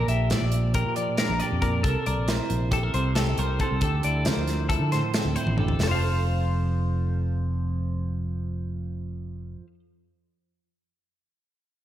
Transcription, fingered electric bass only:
0, 0, Header, 1, 2, 480
1, 0, Start_track
1, 0, Key_signature, -1, "major"
1, 0, Tempo, 438917
1, 2020, Time_signature, 9, 3, 24, 8
1, 12955, End_track
2, 0, Start_track
2, 0, Title_t, "Fingered electric bass"
2, 0, Program_c, 0, 33
2, 87, Note_on_c, 0, 34, 83
2, 335, Note_on_c, 0, 46, 77
2, 352, Note_off_c, 0, 34, 0
2, 444, Note_off_c, 0, 46, 0
2, 450, Note_on_c, 0, 34, 79
2, 905, Note_off_c, 0, 34, 0
2, 936, Note_on_c, 0, 46, 77
2, 1163, Note_off_c, 0, 46, 0
2, 1415, Note_on_c, 0, 34, 74
2, 1530, Note_off_c, 0, 34, 0
2, 1663, Note_on_c, 0, 41, 79
2, 2000, Note_off_c, 0, 41, 0
2, 2016, Note_on_c, 0, 36, 84
2, 2131, Note_off_c, 0, 36, 0
2, 2263, Note_on_c, 0, 36, 78
2, 2382, Note_off_c, 0, 36, 0
2, 2382, Note_on_c, 0, 34, 76
2, 2606, Note_off_c, 0, 34, 0
2, 2739, Note_on_c, 0, 34, 90
2, 3190, Note_off_c, 0, 34, 0
2, 3215, Note_on_c, 0, 36, 83
2, 3668, Note_off_c, 0, 36, 0
2, 3695, Note_on_c, 0, 36, 76
2, 3922, Note_off_c, 0, 36, 0
2, 4058, Note_on_c, 0, 36, 84
2, 4172, Note_off_c, 0, 36, 0
2, 4176, Note_on_c, 0, 38, 94
2, 4403, Note_off_c, 0, 38, 0
2, 4423, Note_on_c, 0, 38, 73
2, 4657, Note_on_c, 0, 50, 86
2, 4674, Note_off_c, 0, 38, 0
2, 4771, Note_off_c, 0, 50, 0
2, 4777, Note_on_c, 0, 38, 75
2, 5229, Note_off_c, 0, 38, 0
2, 5249, Note_on_c, 0, 50, 73
2, 5480, Note_off_c, 0, 50, 0
2, 5742, Note_on_c, 0, 38, 70
2, 5854, Note_off_c, 0, 38, 0
2, 5974, Note_on_c, 0, 33, 72
2, 6315, Note_off_c, 0, 33, 0
2, 6340, Note_on_c, 0, 29, 82
2, 10444, Note_off_c, 0, 29, 0
2, 12955, End_track
0, 0, End_of_file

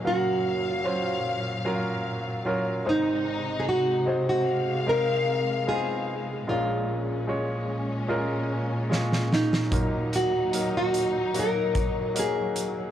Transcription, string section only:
0, 0, Header, 1, 2, 480
1, 0, Start_track
1, 0, Tempo, 804290
1, 24, Time_signature, 4, 2, 24, 8
1, 4344, Tempo, 811908
1, 7674, End_track
2, 0, Start_track
2, 0, Title_t, "String section"
2, 0, Program_c, 0, 48
2, 0, Note_on_c, 0, 54, 53
2, 15, Note_on_c, 0, 77, 73
2, 18, Note_on_c, 0, 46, 62
2, 1683, Note_off_c, 0, 54, 0
2, 1683, Note_off_c, 0, 77, 0
2, 1684, Note_off_c, 0, 46, 0
2, 1699, Note_on_c, 0, 48, 68
2, 1700, Note_on_c, 0, 56, 61
2, 1701, Note_on_c, 0, 63, 79
2, 2653, Note_off_c, 0, 63, 0
2, 2657, Note_on_c, 0, 77, 80
2, 3839, Note_off_c, 0, 48, 0
2, 3848, Note_off_c, 0, 77, 0
2, 3861, Note_on_c, 0, 46, 70
2, 3866, Note_on_c, 0, 61, 70
2, 5760, Note_off_c, 0, 56, 0
2, 5768, Note_off_c, 0, 61, 0
2, 5782, Note_on_c, 0, 63, 72
2, 5786, Note_on_c, 0, 54, 55
2, 7674, Note_off_c, 0, 46, 0
2, 7674, Note_off_c, 0, 54, 0
2, 7674, Note_off_c, 0, 63, 0
2, 7674, End_track
0, 0, End_of_file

